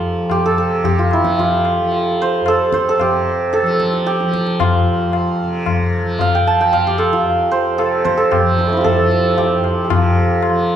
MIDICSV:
0, 0, Header, 1, 4, 480
1, 0, Start_track
1, 0, Tempo, 536673
1, 1715, Time_signature, 5, 2, 24, 8
1, 5065, Tempo, 528634
1, 9692, End_track
2, 0, Start_track
2, 0, Title_t, "Santur"
2, 0, Program_c, 0, 15
2, 0, Note_on_c, 0, 65, 69
2, 0, Note_on_c, 0, 67, 73
2, 0, Note_on_c, 0, 69, 53
2, 275, Note_off_c, 0, 67, 0
2, 278, Note_on_c, 0, 67, 80
2, 404, Note_off_c, 0, 69, 0
2, 408, Note_on_c, 0, 69, 83
2, 515, Note_off_c, 0, 69, 0
2, 519, Note_on_c, 0, 69, 72
2, 755, Note_off_c, 0, 67, 0
2, 758, Note_on_c, 0, 67, 85
2, 878, Note_off_c, 0, 65, 0
2, 882, Note_on_c, 0, 65, 63
2, 1012, Note_on_c, 0, 64, 72
2, 1066, Note_off_c, 0, 65, 0
2, 1245, Note_on_c, 0, 65, 66
2, 1298, Note_off_c, 0, 64, 0
2, 1982, Note_on_c, 0, 72, 83
2, 2215, Note_off_c, 0, 69, 0
2, 2219, Note_on_c, 0, 69, 91
2, 2444, Note_off_c, 0, 72, 0
2, 2447, Note_on_c, 0, 72, 79
2, 2580, Note_off_c, 0, 69, 0
2, 2583, Note_on_c, 0, 69, 86
2, 2687, Note_off_c, 0, 67, 0
2, 2691, Note_on_c, 0, 67, 75
2, 3157, Note_off_c, 0, 69, 0
2, 3161, Note_on_c, 0, 69, 85
2, 3633, Note_off_c, 0, 67, 0
2, 3636, Note_on_c, 0, 67, 79
2, 4115, Note_off_c, 0, 65, 0
2, 4119, Note_on_c, 0, 65, 72
2, 4806, Note_off_c, 0, 72, 0
2, 5560, Note_on_c, 0, 77, 90
2, 5687, Note_on_c, 0, 79, 73
2, 5800, Note_on_c, 0, 81, 91
2, 5804, Note_off_c, 0, 69, 0
2, 5920, Note_off_c, 0, 79, 0
2, 5923, Note_on_c, 0, 79, 81
2, 6029, Note_off_c, 0, 77, 0
2, 6033, Note_on_c, 0, 77, 84
2, 6157, Note_off_c, 0, 67, 0
2, 6161, Note_on_c, 0, 67, 70
2, 6262, Note_on_c, 0, 69, 79
2, 6392, Note_off_c, 0, 65, 0
2, 6396, Note_on_c, 0, 65, 59
2, 6746, Note_on_c, 0, 72, 88
2, 6985, Note_off_c, 0, 69, 0
2, 6989, Note_on_c, 0, 69, 83
2, 7225, Note_off_c, 0, 72, 0
2, 7228, Note_on_c, 0, 72, 84
2, 7341, Note_off_c, 0, 69, 0
2, 7345, Note_on_c, 0, 69, 77
2, 7467, Note_off_c, 0, 67, 0
2, 7470, Note_on_c, 0, 67, 78
2, 7563, Note_off_c, 0, 81, 0
2, 7730, Note_on_c, 0, 53, 31
2, 7753, Note_on_c, 0, 55, 31
2, 7794, Note_on_c, 0, 57, 39
2, 7801, Note_off_c, 0, 79, 0
2, 7813, Note_on_c, 0, 60, 43
2, 7847, Note_on_c, 0, 64, 48
2, 7883, Note_off_c, 0, 65, 0
2, 7887, Note_on_c, 0, 65, 55
2, 7901, Note_off_c, 0, 53, 0
2, 7901, Note_off_c, 0, 77, 0
2, 7917, Note_off_c, 0, 67, 0
2, 7921, Note_on_c, 0, 67, 53
2, 7941, Note_off_c, 0, 55, 0
2, 7949, Note_off_c, 0, 69, 0
2, 7953, Note_on_c, 0, 69, 91
2, 7975, Note_off_c, 0, 57, 0
2, 8434, Note_off_c, 0, 67, 0
2, 8437, Note_on_c, 0, 67, 75
2, 8857, Note_off_c, 0, 67, 0
2, 8860, Note_on_c, 0, 67, 45
2, 8913, Note_off_c, 0, 65, 0
2, 8916, Note_on_c, 0, 65, 69
2, 8971, Note_off_c, 0, 64, 0
2, 9623, Note_off_c, 0, 72, 0
2, 9692, Note_off_c, 0, 60, 0
2, 9692, Note_off_c, 0, 65, 0
2, 9692, Note_off_c, 0, 67, 0
2, 9692, Note_off_c, 0, 69, 0
2, 9692, End_track
3, 0, Start_track
3, 0, Title_t, "Tanpura"
3, 0, Program_c, 1, 104
3, 0, Note_on_c, 1, 41, 53
3, 0, Note_on_c, 1, 48, 61
3, 0, Note_on_c, 1, 53, 56
3, 514, Note_off_c, 1, 48, 0
3, 518, Note_on_c, 1, 48, 55
3, 1066, Note_off_c, 1, 53, 0
3, 1066, Note_on_c, 1, 53, 56
3, 1612, Note_off_c, 1, 53, 0
3, 1612, Note_on_c, 1, 53, 49
3, 2150, Note_off_c, 1, 41, 0
3, 2154, Note_on_c, 1, 41, 52
3, 2689, Note_off_c, 1, 48, 0
3, 2693, Note_on_c, 1, 48, 51
3, 3240, Note_off_c, 1, 53, 0
3, 3240, Note_on_c, 1, 53, 60
3, 3778, Note_off_c, 1, 53, 0
3, 3778, Note_on_c, 1, 53, 57
3, 4314, Note_off_c, 1, 41, 0
3, 4318, Note_on_c, 1, 41, 61
3, 4859, Note_off_c, 1, 48, 0
3, 4862, Note_on_c, 1, 48, 53
3, 5391, Note_off_c, 1, 53, 0
3, 5391, Note_on_c, 1, 53, 59
3, 5929, Note_off_c, 1, 53, 0
3, 5929, Note_on_c, 1, 53, 52
3, 6475, Note_off_c, 1, 41, 0
3, 6478, Note_on_c, 1, 41, 49
3, 7009, Note_off_c, 1, 48, 0
3, 7013, Note_on_c, 1, 48, 46
3, 7565, Note_off_c, 1, 53, 0
3, 7565, Note_on_c, 1, 53, 54
3, 8096, Note_off_c, 1, 53, 0
3, 8096, Note_on_c, 1, 53, 55
3, 8636, Note_off_c, 1, 41, 0
3, 8639, Note_on_c, 1, 41, 49
3, 8912, Note_off_c, 1, 48, 0
3, 8916, Note_on_c, 1, 48, 52
3, 9450, Note_off_c, 1, 53, 0
3, 9450, Note_on_c, 1, 53, 48
3, 9692, Note_off_c, 1, 41, 0
3, 9692, Note_off_c, 1, 48, 0
3, 9692, Note_off_c, 1, 53, 0
3, 9692, End_track
4, 0, Start_track
4, 0, Title_t, "Tabla"
4, 265, Note_on_c, 9, 60, 58
4, 265, Note_on_c, 9, 64, 61
4, 355, Note_off_c, 9, 60, 0
4, 355, Note_off_c, 9, 64, 0
4, 751, Note_on_c, 9, 63, 64
4, 751, Note_on_c, 9, 64, 61
4, 841, Note_off_c, 9, 63, 0
4, 841, Note_off_c, 9, 64, 0
4, 992, Note_on_c, 9, 60, 56
4, 1082, Note_off_c, 9, 60, 0
4, 1113, Note_on_c, 9, 37, 55
4, 1203, Note_off_c, 9, 37, 0
4, 1236, Note_on_c, 9, 63, 71
4, 1236, Note_on_c, 9, 64, 64
4, 1325, Note_off_c, 9, 63, 0
4, 1325, Note_off_c, 9, 64, 0
4, 1476, Note_on_c, 9, 60, 58
4, 1566, Note_off_c, 9, 60, 0
4, 1714, Note_on_c, 9, 63, 69
4, 1804, Note_off_c, 9, 63, 0
4, 2199, Note_on_c, 9, 60, 71
4, 2288, Note_off_c, 9, 60, 0
4, 2437, Note_on_c, 9, 37, 60
4, 2526, Note_off_c, 9, 37, 0
4, 2679, Note_on_c, 9, 60, 69
4, 2679, Note_on_c, 9, 64, 55
4, 2769, Note_off_c, 9, 60, 0
4, 2769, Note_off_c, 9, 64, 0
4, 3156, Note_on_c, 9, 62, 70
4, 3246, Note_off_c, 9, 62, 0
4, 3278, Note_on_c, 9, 62, 55
4, 3368, Note_off_c, 9, 62, 0
4, 3396, Note_on_c, 9, 37, 53
4, 3486, Note_off_c, 9, 37, 0
4, 3517, Note_on_c, 9, 62, 57
4, 3607, Note_off_c, 9, 62, 0
4, 3636, Note_on_c, 9, 62, 72
4, 3725, Note_off_c, 9, 62, 0
4, 3759, Note_on_c, 9, 62, 52
4, 3849, Note_off_c, 9, 62, 0
4, 3877, Note_on_c, 9, 37, 61
4, 3967, Note_off_c, 9, 37, 0
4, 3994, Note_on_c, 9, 62, 55
4, 4084, Note_off_c, 9, 62, 0
4, 4113, Note_on_c, 9, 60, 95
4, 4113, Note_on_c, 9, 64, 83
4, 4203, Note_off_c, 9, 60, 0
4, 4203, Note_off_c, 9, 64, 0
4, 4590, Note_on_c, 9, 60, 69
4, 4680, Note_off_c, 9, 60, 0
4, 5065, Note_on_c, 9, 60, 65
4, 5065, Note_on_c, 9, 64, 58
4, 5155, Note_off_c, 9, 60, 0
4, 5155, Note_off_c, 9, 64, 0
4, 5544, Note_on_c, 9, 63, 70
4, 5544, Note_on_c, 9, 64, 61
4, 5635, Note_off_c, 9, 63, 0
4, 5635, Note_off_c, 9, 64, 0
4, 6030, Note_on_c, 9, 63, 69
4, 6030, Note_on_c, 9, 64, 65
4, 6121, Note_off_c, 9, 63, 0
4, 6121, Note_off_c, 9, 64, 0
4, 6274, Note_on_c, 9, 60, 61
4, 6365, Note_off_c, 9, 60, 0
4, 6397, Note_on_c, 9, 37, 45
4, 6488, Note_off_c, 9, 37, 0
4, 6517, Note_on_c, 9, 63, 74
4, 6608, Note_off_c, 9, 63, 0
4, 6998, Note_on_c, 9, 60, 69
4, 7089, Note_off_c, 9, 60, 0
4, 7236, Note_on_c, 9, 37, 60
4, 7326, Note_off_c, 9, 37, 0
4, 7476, Note_on_c, 9, 60, 67
4, 7476, Note_on_c, 9, 64, 59
4, 7567, Note_off_c, 9, 60, 0
4, 7567, Note_off_c, 9, 64, 0
4, 7719, Note_on_c, 9, 62, 57
4, 7810, Note_off_c, 9, 62, 0
4, 7955, Note_on_c, 9, 60, 69
4, 7955, Note_on_c, 9, 64, 65
4, 8046, Note_off_c, 9, 60, 0
4, 8046, Note_off_c, 9, 64, 0
4, 8199, Note_on_c, 9, 62, 61
4, 8290, Note_off_c, 9, 62, 0
4, 8435, Note_on_c, 9, 63, 77
4, 8435, Note_on_c, 9, 64, 65
4, 8526, Note_off_c, 9, 63, 0
4, 8526, Note_off_c, 9, 64, 0
4, 8676, Note_on_c, 9, 60, 56
4, 8767, Note_off_c, 9, 60, 0
4, 8915, Note_on_c, 9, 60, 87
4, 8915, Note_on_c, 9, 64, 85
4, 9006, Note_off_c, 9, 60, 0
4, 9006, Note_off_c, 9, 64, 0
4, 9390, Note_on_c, 9, 60, 71
4, 9480, Note_off_c, 9, 60, 0
4, 9692, End_track
0, 0, End_of_file